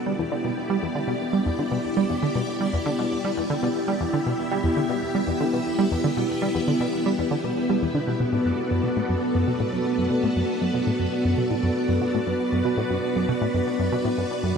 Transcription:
0.06 G3 B3 E4 G4 D5
0.19 E2
0.32 D3
0.45 B2
0.70 G3
0.83 E2
0.95 D3
1.08 B2
1.33 G3
1.46 E2
1.59 D3
1.72 B2
1.97 G3
2.10 E2
2.23 D3
2.35 B2
2.61 G3
2.73 E2
2.86 D3
2.99 B2
3.25 G3
3.37 E2
3.50 D3
3.63 B2
3.88 G3
4.01 E2
4.13 D3 E5
4.26 B2
4.51 G3
4.64 E2
4.77 D3
4.89 B2
5.15 G3
5.27 E2
5.41 D3
5.53 B2
5.79 G3
5.92 E2
6.04 D3
6.17 B2
6.42 G3
6.55 E2
6.68 D3
6.80 B2
7.06 G3
7.19 E2
7.31 D3
7.44 B2
7.70 G3
7.82 E2
7.95 D3
8.07 B2
8.20 B2 F#4 A4 D5
8.33 A2
8.45 F#2
8.71 F#2
8.84 B2
8.97 A2
9.09 F#2
9.35 F#2
9.48 B2
9.60 A2
9.73 F#2
9.98 F#2
10.11 B2
10.23 A2
10.36 F#2
10.61 F#2
10.74 B2
10.87 A2
10.99 F#2
11.25 F#2
11.38 B2
11.51 A2
11.63 F#2
11.89 F#2
12.02 B2
12.14 A2
12.27 F#2 B4
12.52 F#2
12.65 B2
12.77 A2
12.90 F#2
13.16 F#2
13.29 B2
13.42 A2
13.54 F#2
13.79 F#2
13.92 B2
14.05 A2
14.18 F#2
14.43 F#2

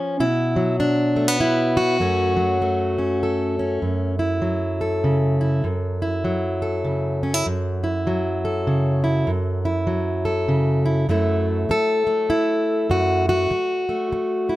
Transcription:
Already playing: F3 C#4
0.20 B2 E4
0.56 F#3
0.80 D4
1.16 A3
1.28 B3
1.40 E4
1.77 F#4
2.00 F#2 F#3 A3 C#4
2.37 F#3
2.62 A3
2.98 C#4
3.23 A4
3.59 C#4
3.82 F#2
4.19 E4
4.42 F#3
4.81 A4
5.04 C#3
5.41 E4
5.64 F#2
6.02 E4
6.24 F#3
6.62 A4
6.84 C#3
7.23 C#4
7.34 E4
7.46 F#2
7.84 E4
8.07 F#3
8.45 A4
8.67 C#3
9.04 E4
9.27 F#2
9.65 E4
9.87 F#3
10.25 A4
10.48 C#3
10.86 E4
11.09 F#2 F#3 A3 E4 A4
11.69 A4, muted steel-string acoustic guitar stroke
12.07 A3
12.30 E4, muted steel-string acoustic guitar stroke
12.90 F#2 F#4
13.29 F#4
13.51 muted steel-string acoustic guitar stroke
13.89 A3
14.12 muted steel-string acoustic guitar stroke
14.49 E4

